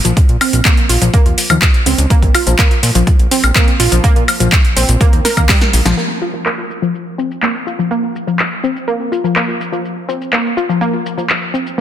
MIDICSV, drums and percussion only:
0, 0, Header, 1, 2, 480
1, 0, Start_track
1, 0, Tempo, 483871
1, 167, Time_signature, 4, 2, 24, 8
1, 11711, End_track
2, 0, Start_track
2, 0, Title_t, "Drums"
2, 49, Note_on_c, 9, 42, 51
2, 55, Note_on_c, 9, 82, 46
2, 148, Note_off_c, 9, 42, 0
2, 154, Note_off_c, 9, 82, 0
2, 166, Note_on_c, 9, 36, 118
2, 167, Note_on_c, 9, 42, 51
2, 173, Note_on_c, 9, 82, 36
2, 266, Note_off_c, 9, 36, 0
2, 266, Note_off_c, 9, 42, 0
2, 273, Note_off_c, 9, 82, 0
2, 288, Note_on_c, 9, 42, 26
2, 387, Note_off_c, 9, 42, 0
2, 407, Note_on_c, 9, 46, 100
2, 407, Note_on_c, 9, 76, 78
2, 413, Note_on_c, 9, 82, 77
2, 506, Note_off_c, 9, 46, 0
2, 506, Note_off_c, 9, 76, 0
2, 512, Note_off_c, 9, 82, 0
2, 528, Note_on_c, 9, 42, 50
2, 534, Note_on_c, 9, 82, 41
2, 627, Note_off_c, 9, 42, 0
2, 634, Note_off_c, 9, 82, 0
2, 646, Note_on_c, 9, 36, 118
2, 646, Note_on_c, 9, 39, 116
2, 647, Note_on_c, 9, 42, 51
2, 653, Note_on_c, 9, 82, 36
2, 745, Note_off_c, 9, 36, 0
2, 745, Note_off_c, 9, 39, 0
2, 746, Note_off_c, 9, 42, 0
2, 752, Note_off_c, 9, 82, 0
2, 767, Note_on_c, 9, 42, 25
2, 867, Note_off_c, 9, 42, 0
2, 887, Note_on_c, 9, 46, 101
2, 893, Note_on_c, 9, 82, 76
2, 986, Note_off_c, 9, 46, 0
2, 992, Note_off_c, 9, 82, 0
2, 1008, Note_on_c, 9, 42, 48
2, 1014, Note_on_c, 9, 82, 46
2, 1107, Note_off_c, 9, 42, 0
2, 1114, Note_off_c, 9, 82, 0
2, 1126, Note_on_c, 9, 36, 115
2, 1127, Note_on_c, 9, 42, 52
2, 1134, Note_on_c, 9, 82, 35
2, 1226, Note_off_c, 9, 36, 0
2, 1227, Note_off_c, 9, 42, 0
2, 1233, Note_off_c, 9, 82, 0
2, 1248, Note_on_c, 9, 42, 26
2, 1347, Note_off_c, 9, 42, 0
2, 1367, Note_on_c, 9, 46, 100
2, 1373, Note_on_c, 9, 82, 83
2, 1466, Note_off_c, 9, 46, 0
2, 1472, Note_off_c, 9, 82, 0
2, 1488, Note_on_c, 9, 42, 51
2, 1488, Note_on_c, 9, 76, 67
2, 1494, Note_on_c, 9, 82, 45
2, 1587, Note_off_c, 9, 42, 0
2, 1587, Note_off_c, 9, 76, 0
2, 1593, Note_off_c, 9, 82, 0
2, 1606, Note_on_c, 9, 36, 115
2, 1606, Note_on_c, 9, 39, 115
2, 1607, Note_on_c, 9, 42, 51
2, 1613, Note_on_c, 9, 82, 33
2, 1705, Note_off_c, 9, 39, 0
2, 1706, Note_off_c, 9, 36, 0
2, 1706, Note_off_c, 9, 42, 0
2, 1712, Note_off_c, 9, 82, 0
2, 1728, Note_on_c, 9, 42, 27
2, 1827, Note_off_c, 9, 42, 0
2, 1847, Note_on_c, 9, 46, 95
2, 1854, Note_on_c, 9, 82, 76
2, 1947, Note_off_c, 9, 46, 0
2, 1953, Note_off_c, 9, 82, 0
2, 1968, Note_on_c, 9, 42, 50
2, 1974, Note_on_c, 9, 82, 46
2, 2067, Note_off_c, 9, 42, 0
2, 2074, Note_off_c, 9, 82, 0
2, 2086, Note_on_c, 9, 36, 114
2, 2088, Note_on_c, 9, 42, 56
2, 2094, Note_on_c, 9, 82, 35
2, 2185, Note_off_c, 9, 36, 0
2, 2187, Note_off_c, 9, 42, 0
2, 2193, Note_off_c, 9, 82, 0
2, 2207, Note_on_c, 9, 36, 55
2, 2208, Note_on_c, 9, 42, 27
2, 2306, Note_off_c, 9, 36, 0
2, 2307, Note_off_c, 9, 42, 0
2, 2327, Note_on_c, 9, 46, 97
2, 2327, Note_on_c, 9, 76, 72
2, 2333, Note_on_c, 9, 82, 82
2, 2426, Note_off_c, 9, 46, 0
2, 2426, Note_off_c, 9, 76, 0
2, 2432, Note_off_c, 9, 82, 0
2, 2447, Note_on_c, 9, 42, 52
2, 2454, Note_on_c, 9, 82, 44
2, 2546, Note_off_c, 9, 42, 0
2, 2553, Note_off_c, 9, 82, 0
2, 2566, Note_on_c, 9, 36, 116
2, 2566, Note_on_c, 9, 39, 113
2, 2568, Note_on_c, 9, 42, 55
2, 2574, Note_on_c, 9, 82, 37
2, 2665, Note_off_c, 9, 36, 0
2, 2666, Note_off_c, 9, 39, 0
2, 2667, Note_off_c, 9, 42, 0
2, 2673, Note_off_c, 9, 82, 0
2, 2689, Note_on_c, 9, 42, 28
2, 2788, Note_off_c, 9, 42, 0
2, 2808, Note_on_c, 9, 46, 99
2, 2814, Note_on_c, 9, 82, 81
2, 2907, Note_off_c, 9, 46, 0
2, 2913, Note_off_c, 9, 82, 0
2, 2928, Note_on_c, 9, 42, 52
2, 2935, Note_on_c, 9, 82, 47
2, 3028, Note_off_c, 9, 42, 0
2, 3034, Note_off_c, 9, 82, 0
2, 3046, Note_on_c, 9, 36, 114
2, 3048, Note_on_c, 9, 42, 52
2, 3054, Note_on_c, 9, 82, 33
2, 3145, Note_off_c, 9, 36, 0
2, 3147, Note_off_c, 9, 42, 0
2, 3153, Note_off_c, 9, 82, 0
2, 3169, Note_on_c, 9, 42, 27
2, 3268, Note_off_c, 9, 42, 0
2, 3288, Note_on_c, 9, 46, 105
2, 3294, Note_on_c, 9, 82, 84
2, 3387, Note_off_c, 9, 46, 0
2, 3393, Note_off_c, 9, 82, 0
2, 3409, Note_on_c, 9, 42, 53
2, 3409, Note_on_c, 9, 76, 64
2, 3415, Note_on_c, 9, 82, 43
2, 3508, Note_off_c, 9, 42, 0
2, 3508, Note_off_c, 9, 76, 0
2, 3514, Note_off_c, 9, 82, 0
2, 3526, Note_on_c, 9, 36, 108
2, 3528, Note_on_c, 9, 39, 120
2, 3529, Note_on_c, 9, 42, 54
2, 3535, Note_on_c, 9, 82, 36
2, 3626, Note_off_c, 9, 36, 0
2, 3627, Note_off_c, 9, 39, 0
2, 3628, Note_off_c, 9, 42, 0
2, 3634, Note_off_c, 9, 82, 0
2, 3648, Note_on_c, 9, 42, 26
2, 3748, Note_off_c, 9, 42, 0
2, 3767, Note_on_c, 9, 46, 100
2, 3774, Note_on_c, 9, 82, 79
2, 3867, Note_off_c, 9, 46, 0
2, 3873, Note_off_c, 9, 82, 0
2, 3888, Note_on_c, 9, 42, 55
2, 3894, Note_on_c, 9, 82, 49
2, 3987, Note_off_c, 9, 42, 0
2, 3994, Note_off_c, 9, 82, 0
2, 4006, Note_on_c, 9, 36, 116
2, 4008, Note_on_c, 9, 42, 58
2, 4014, Note_on_c, 9, 82, 36
2, 4106, Note_off_c, 9, 36, 0
2, 4107, Note_off_c, 9, 42, 0
2, 4113, Note_off_c, 9, 82, 0
2, 4128, Note_on_c, 9, 42, 28
2, 4228, Note_off_c, 9, 42, 0
2, 4247, Note_on_c, 9, 46, 96
2, 4247, Note_on_c, 9, 76, 76
2, 4254, Note_on_c, 9, 82, 80
2, 4347, Note_off_c, 9, 46, 0
2, 4347, Note_off_c, 9, 76, 0
2, 4353, Note_off_c, 9, 82, 0
2, 4368, Note_on_c, 9, 42, 51
2, 4375, Note_on_c, 9, 82, 43
2, 4467, Note_off_c, 9, 42, 0
2, 4474, Note_off_c, 9, 82, 0
2, 4486, Note_on_c, 9, 36, 113
2, 4486, Note_on_c, 9, 39, 112
2, 4488, Note_on_c, 9, 42, 53
2, 4494, Note_on_c, 9, 82, 35
2, 4586, Note_off_c, 9, 36, 0
2, 4586, Note_off_c, 9, 39, 0
2, 4587, Note_off_c, 9, 42, 0
2, 4593, Note_off_c, 9, 82, 0
2, 4609, Note_on_c, 9, 42, 27
2, 4708, Note_off_c, 9, 42, 0
2, 4728, Note_on_c, 9, 46, 99
2, 4734, Note_on_c, 9, 82, 81
2, 4827, Note_off_c, 9, 46, 0
2, 4833, Note_off_c, 9, 82, 0
2, 4849, Note_on_c, 9, 42, 55
2, 4855, Note_on_c, 9, 82, 46
2, 4948, Note_off_c, 9, 42, 0
2, 4954, Note_off_c, 9, 82, 0
2, 4966, Note_on_c, 9, 36, 119
2, 4969, Note_on_c, 9, 42, 52
2, 4975, Note_on_c, 9, 82, 36
2, 5066, Note_off_c, 9, 36, 0
2, 5068, Note_off_c, 9, 42, 0
2, 5074, Note_off_c, 9, 82, 0
2, 5089, Note_on_c, 9, 42, 27
2, 5188, Note_off_c, 9, 42, 0
2, 5208, Note_on_c, 9, 38, 63
2, 5208, Note_on_c, 9, 46, 101
2, 5214, Note_on_c, 9, 82, 82
2, 5307, Note_off_c, 9, 38, 0
2, 5307, Note_off_c, 9, 46, 0
2, 5313, Note_off_c, 9, 82, 0
2, 5327, Note_on_c, 9, 36, 56
2, 5329, Note_on_c, 9, 42, 54
2, 5329, Note_on_c, 9, 76, 58
2, 5335, Note_on_c, 9, 82, 45
2, 5426, Note_off_c, 9, 36, 0
2, 5428, Note_off_c, 9, 42, 0
2, 5428, Note_off_c, 9, 76, 0
2, 5434, Note_off_c, 9, 82, 0
2, 5446, Note_on_c, 9, 36, 111
2, 5447, Note_on_c, 9, 39, 122
2, 5448, Note_on_c, 9, 38, 78
2, 5448, Note_on_c, 9, 46, 59
2, 5454, Note_on_c, 9, 82, 34
2, 5545, Note_off_c, 9, 36, 0
2, 5546, Note_off_c, 9, 39, 0
2, 5547, Note_off_c, 9, 38, 0
2, 5547, Note_off_c, 9, 46, 0
2, 5554, Note_off_c, 9, 82, 0
2, 5569, Note_on_c, 9, 38, 71
2, 5569, Note_on_c, 9, 42, 28
2, 5668, Note_off_c, 9, 38, 0
2, 5668, Note_off_c, 9, 42, 0
2, 5688, Note_on_c, 9, 46, 94
2, 5695, Note_on_c, 9, 82, 73
2, 5788, Note_off_c, 9, 46, 0
2, 5794, Note_off_c, 9, 82, 0
2, 5809, Note_on_c, 9, 38, 85
2, 5809, Note_on_c, 9, 42, 54
2, 5816, Note_on_c, 9, 82, 47
2, 5908, Note_off_c, 9, 38, 0
2, 5908, Note_off_c, 9, 42, 0
2, 5915, Note_off_c, 9, 82, 0
2, 5934, Note_on_c, 9, 82, 33
2, 6034, Note_off_c, 9, 82, 0
2, 6174, Note_on_c, 9, 82, 72
2, 6273, Note_off_c, 9, 82, 0
2, 6296, Note_on_c, 9, 82, 38
2, 6395, Note_off_c, 9, 82, 0
2, 6407, Note_on_c, 9, 39, 110
2, 6414, Note_on_c, 9, 82, 30
2, 6506, Note_off_c, 9, 39, 0
2, 6513, Note_off_c, 9, 82, 0
2, 6654, Note_on_c, 9, 82, 72
2, 6753, Note_off_c, 9, 82, 0
2, 6775, Note_on_c, 9, 82, 39
2, 6874, Note_off_c, 9, 82, 0
2, 6893, Note_on_c, 9, 82, 30
2, 6993, Note_off_c, 9, 82, 0
2, 7133, Note_on_c, 9, 82, 74
2, 7232, Note_off_c, 9, 82, 0
2, 7255, Note_on_c, 9, 82, 41
2, 7354, Note_off_c, 9, 82, 0
2, 7366, Note_on_c, 9, 39, 112
2, 7374, Note_on_c, 9, 82, 31
2, 7465, Note_off_c, 9, 39, 0
2, 7473, Note_off_c, 9, 82, 0
2, 7614, Note_on_c, 9, 82, 70
2, 7713, Note_off_c, 9, 82, 0
2, 7734, Note_on_c, 9, 82, 41
2, 7833, Note_off_c, 9, 82, 0
2, 7853, Note_on_c, 9, 82, 32
2, 7952, Note_off_c, 9, 82, 0
2, 8093, Note_on_c, 9, 82, 67
2, 8192, Note_off_c, 9, 82, 0
2, 8213, Note_on_c, 9, 82, 38
2, 8312, Note_off_c, 9, 82, 0
2, 8326, Note_on_c, 9, 39, 118
2, 8333, Note_on_c, 9, 82, 30
2, 8425, Note_off_c, 9, 39, 0
2, 8432, Note_off_c, 9, 82, 0
2, 8572, Note_on_c, 9, 82, 68
2, 8671, Note_off_c, 9, 82, 0
2, 8693, Note_on_c, 9, 82, 41
2, 8793, Note_off_c, 9, 82, 0
2, 8813, Note_on_c, 9, 82, 30
2, 8912, Note_off_c, 9, 82, 0
2, 9053, Note_on_c, 9, 82, 70
2, 9152, Note_off_c, 9, 82, 0
2, 9174, Note_on_c, 9, 82, 39
2, 9273, Note_off_c, 9, 82, 0
2, 9285, Note_on_c, 9, 39, 118
2, 9293, Note_on_c, 9, 82, 29
2, 9384, Note_off_c, 9, 39, 0
2, 9392, Note_off_c, 9, 82, 0
2, 9532, Note_on_c, 9, 82, 69
2, 9632, Note_off_c, 9, 82, 0
2, 9653, Note_on_c, 9, 82, 39
2, 9753, Note_off_c, 9, 82, 0
2, 9773, Note_on_c, 9, 82, 30
2, 9872, Note_off_c, 9, 82, 0
2, 10012, Note_on_c, 9, 82, 71
2, 10112, Note_off_c, 9, 82, 0
2, 10134, Note_on_c, 9, 82, 36
2, 10233, Note_off_c, 9, 82, 0
2, 10246, Note_on_c, 9, 39, 110
2, 10253, Note_on_c, 9, 82, 29
2, 10345, Note_off_c, 9, 39, 0
2, 10352, Note_off_c, 9, 82, 0
2, 10493, Note_on_c, 9, 82, 68
2, 10592, Note_off_c, 9, 82, 0
2, 10614, Note_on_c, 9, 82, 39
2, 10713, Note_off_c, 9, 82, 0
2, 10733, Note_on_c, 9, 82, 29
2, 10832, Note_off_c, 9, 82, 0
2, 10973, Note_on_c, 9, 82, 68
2, 11072, Note_off_c, 9, 82, 0
2, 11094, Note_on_c, 9, 82, 39
2, 11194, Note_off_c, 9, 82, 0
2, 11206, Note_on_c, 9, 39, 113
2, 11213, Note_on_c, 9, 82, 29
2, 11305, Note_off_c, 9, 39, 0
2, 11312, Note_off_c, 9, 82, 0
2, 11453, Note_on_c, 9, 82, 65
2, 11552, Note_off_c, 9, 82, 0
2, 11574, Note_on_c, 9, 82, 40
2, 11673, Note_off_c, 9, 82, 0
2, 11711, End_track
0, 0, End_of_file